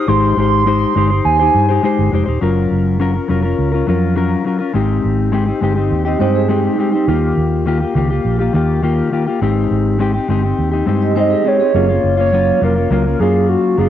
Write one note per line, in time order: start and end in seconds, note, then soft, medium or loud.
0.08 0.32 G#1 loud
0.08 0.36 G#3 medium
0.08 0.37 D#4 medium
0.08 0.38 G4 medium
0.08 0.38 C5 medium
0.08 1.25 C6 loud
0.37 0.84 G#1 medium
0.37 0.65 G#3 medium
0.37 0.66 D#4 medium
0.37 0.66 G4 medium
0.37 0.67 C5 medium
0.66 0.94 G#3 medium
0.66 0.95 D#4 medium
0.66 0.96 G4 medium
0.66 0.97 C5 medium
0.95 1.19 G1 medium
0.95 1.10 G#3 medium
0.95 1.11 D#4 medium
0.95 1.11 G4 medium
0.95 1.09 C5 medium
1.10 1.41 D#4 soft
1.10 1.40 G4 soft
1.10 1.38 C5 medium
1.25 1.48 D#2 loud
1.25 2.08 G#5 medium
1.39 1.70 D#4 soft
1.39 1.69 G4 soft
1.39 1.67 C5 medium
1.55 1.78 G2 medium
1.69 1.83 D#4 soft
1.69 1.83 G4 medium
1.69 1.83 C5 medium
1.83 2.11 G#3 medium
1.83 2.12 D#4 medium
1.83 2.13 G4 medium
1.83 2.13 C5 medium
1.99 2.10 G1 medium
2.12 2.24 F1 loud
2.12 2.27 G#3 medium
2.12 2.27 D#4 medium
2.12 2.27 G4 medium
2.12 2.25 C5 medium
2.26 2.39 D#1 medium
2.26 2.41 D#4 medium
2.26 2.42 G4 medium
2.26 2.41 C5 medium
2.41 2.65 F#1 medium
2.41 2.98 F#3 medium
2.41 2.99 C#4 medium
2.41 3.00 F4 medium
2.41 3.00 A#4 medium
2.71 3.18 F#1 medium
3.00 3.14 F#3 medium
3.00 3.14 C#4 medium
3.00 3.14 F4 medium
3.00 3.12 A#4 medium
3.14 3.28 C#4 soft
3.14 3.29 F4 soft
3.14 3.29 A#4 medium
3.28 3.53 F1 medium
3.28 3.43 F#3 medium
3.28 3.44 C#4 medium
3.28 3.43 F4 medium
3.28 3.41 A#4 medium
3.43 3.74 C#4 soft
3.43 3.73 F4 soft
3.43 3.71 A#4 medium
3.59 3.82 C#2 medium
3.72 3.87 C#4 soft
3.72 3.88 F4 soft
3.72 3.87 A#4 soft
3.87 4.34 F2 medium
3.87 4.14 F#3 medium
3.87 4.15 C#4 medium
3.87 4.16 F4 medium
3.87 4.16 A#4 medium
4.15 4.43 F#3 medium
4.15 4.45 C#4 medium
4.15 4.45 F4 medium
4.15 4.46 A#4 medium
4.44 4.60 F#3 medium
4.44 4.60 C#4 medium
4.44 4.59 F4 medium
4.44 4.57 A#4 medium
4.59 4.74 C#4 soft
4.59 4.75 F4 soft
4.59 4.74 A#4 medium
4.74 4.98 G#1 medium
4.74 5.31 G#3 medium
4.74 5.32 C4 medium
4.74 5.33 D#4 medium
4.74 5.34 G4 medium
5.04 5.51 G#1 medium
5.32 5.47 G#3 medium
5.32 5.47 C4 medium
5.32 5.46 D#4 medium
5.32 5.45 G4 medium
5.46 5.61 C4 soft
5.46 5.62 D#4 soft
5.46 5.61 G4 medium
5.61 5.93 G1 medium
5.61 5.76 G#3 medium
5.61 5.77 C4 medium
5.61 5.76 D#4 medium
5.61 5.74 G4 medium
5.75 6.06 C4 soft
5.75 6.05 D#4 soft
5.75 6.04 G4 medium
5.91 6.14 D#2 medium
6.05 6.19 C4 soft
6.05 6.20 D#4 soft
6.05 6.20 G4 medium
6.05 6.20 D#5 medium
6.19 6.67 G2 medium
6.19 6.47 G#3 medium
6.19 6.48 C4 medium
6.19 6.49 D#4 medium
6.19 6.35 D#4 medium
6.19 6.49 G4 medium
6.19 6.34 C5 medium
6.35 6.49 C4 medium
6.35 6.49 G#4 medium
6.48 6.76 G#3 medium
6.48 6.77 C4 medium
6.48 6.78 D#4 medium
6.48 6.63 G4 medium
6.48 6.79 G4 medium
6.64 7.06 G3 medium
6.64 7.06 D#4 medium
6.78 6.93 G#3 medium
6.78 6.93 C4 medium
6.78 6.92 D#4 medium
6.78 6.91 G4 medium
6.92 7.08 C4 soft
6.92 7.08 D#4 soft
6.92 7.07 G4 medium
7.07 7.31 D#2 medium
7.07 7.65 D#3 medium
7.07 7.65 A#3 medium
7.07 7.66 F4 medium
7.07 7.67 G4 medium
7.37 7.84 D#2 medium
7.66 7.81 D#3 medium
7.66 7.81 A#3 medium
7.66 7.81 F4 medium
7.66 7.79 G4 medium
7.80 7.95 A#3 soft
7.80 7.96 F4 soft
7.80 7.95 G4 medium
7.95 8.19 C#2 medium
7.95 8.10 D#3 medium
7.95 8.10 A#3 medium
7.95 8.10 F4 medium
7.95 8.09 G4 medium
8.10 8.41 A#3 soft
8.10 8.39 F4 soft
8.10 8.38 G4 medium
8.25 8.48 A#1 medium
8.39 8.53 A#3 soft
8.39 8.54 F4 soft
8.39 8.54 G4 soft
8.53 9.01 D#2 medium
8.53 8.81 D#3 medium
8.53 8.82 A#3 medium
8.53 8.82 F4 medium
8.53 8.83 G4 medium
8.82 9.10 D#3 medium
8.82 9.11 A#3 medium
8.82 9.12 F4 medium
8.82 9.12 G4 medium
9.11 9.26 D#3 medium
9.11 9.27 A#3 medium
9.11 9.26 F4 medium
9.11 9.25 G4 medium
9.26 9.42 A#3 soft
9.26 9.42 F4 medium
9.26 9.41 G4 medium
9.41 9.65 G#1 medium
9.41 9.98 G#3 medium
9.41 9.99 C4 medium
9.41 9.99 D#4 medium
9.41 10.00 G4 medium
9.71 10.17 G#1 medium
9.99 10.14 G#3 medium
9.99 10.14 C4 medium
9.99 10.14 D#4 medium
9.99 10.13 G4 medium
10.14 10.28 C4 soft
10.14 10.29 D#4 soft
10.14 10.29 G4 medium
10.28 10.52 G1 medium
10.28 10.43 G#3 medium
10.28 10.44 C4 medium
10.28 10.44 D#4 medium
10.28 10.42 G4 medium
10.43 10.73 C4 soft
10.43 10.72 D#4 soft
10.43 10.70 G4 medium
10.59 10.82 D#2 medium
10.72 10.86 C4 soft
10.72 10.87 D#4 medium
10.72 10.87 G4 soft
10.86 11.34 G2 medium
10.86 11.14 G#3 medium
10.86 11.15 C4 medium
10.86 11.15 D#4 medium
10.86 11.16 G4 medium
11.02 11.16 G4 medium
11.02 11.16 D#5 medium
11.15 11.43 G#3 medium
11.15 11.44 C4 medium
11.15 11.45 D#4 medium
11.15 11.30 D#4 medium
11.15 11.46 G4 medium
11.15 11.30 C5 medium
11.15 11.49 D#5 loud
11.31 11.45 C4 medium
11.31 11.44 G#4 medium
11.44 11.59 G#3 medium
11.44 11.60 C4 medium
11.44 11.60 D#4 medium
11.44 11.59 G4 medium
11.44 11.58 G4 medium
11.44 12.19 C#5 loud
11.59 11.88 C4 medium
11.59 11.74 C4 soft
11.59 11.75 D#4 soft
11.59 11.74 G4 medium
11.59 11.87 G#4 medium
11.74 11.98 F#1 medium
11.74 11.89 F#3 medium
11.74 11.89 A#3 medium
11.74 11.89 C#4 medium
11.74 11.88 F4 medium
11.89 12.19 A#3 soft
11.89 12.18 C#4 soft
11.89 12.16 F4 medium
12.04 12.50 F#1 medium
12.17 12.32 A#3 soft
12.17 12.33 C#4 soft
12.17 12.32 F4 soft
12.17 12.60 C#5 loud
12.32 12.60 F#3 medium
12.32 12.61 A#3 medium
12.32 12.62 C#4 medium
12.32 12.63 F4 medium
12.61 12.85 F1 medium
12.61 12.76 F#3 medium
12.61 12.77 A#3 medium
12.61 12.76 C#4 medium
12.61 12.75 F4 medium
12.61 12.90 A#4 medium
12.76 12.90 A#3 soft
12.76 12.91 C#4 soft
12.76 12.91 F4 soft
12.90 13.14 C#2 medium
12.90 13.05 F#3 medium
12.90 13.06 A#3 medium
12.90 13.06 C#4 medium
12.90 13.04 F4 medium
12.90 13.19 A#4 medium
13.05 13.19 A#3 soft
13.05 13.20 C#4 soft
13.05 13.20 F4 soft
13.19 13.55 F#2 medium
13.19 13.76 F#3 medium
13.19 13.78 A#3 medium
13.19 13.79 C#4 medium
13.19 13.79 F4 medium
13.19 13.47 G#4 medium
13.49 13.76 F#4 medium
13.78 13.89 F#1 medium
13.78 13.89 F#3 medium
13.78 13.89 A#3 medium
13.78 13.89 C#4 medium
13.78 13.89 F4 medium
13.78 13.89 G#4 loud